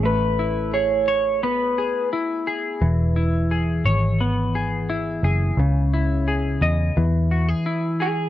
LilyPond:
<<
  \new Staff \with { instrumentName = "Clean electric guitar" } { \time 4/4 \key e \major \tempo 4 = 87 b'4 cis''4 b'4 r4 | r1 | r2. r8 gis'8 | }
  \new Staff \with { instrumentName = "Clean electric guitar" } { \time 4/4 \key e \major a8 e'8 gis'8 cis''8 b8 gis'8 e'8 gis'8 | e8 e'8 gis'8 cis''8 b8 gis'8 e'8 gis'8 | cis8 e'8 gis'8 dis''8 e8 fis'16 gis'16 e'8 gis'8 | }
  \new Staff \with { instrumentName = "Picked electric bass" } { \clef bass \time 4/4 \key e \major a,,2.~ a,,8 r8 | e,,4. gis,,2 fis,,8 | cis,4. e,8 e,4 r4 | }
>>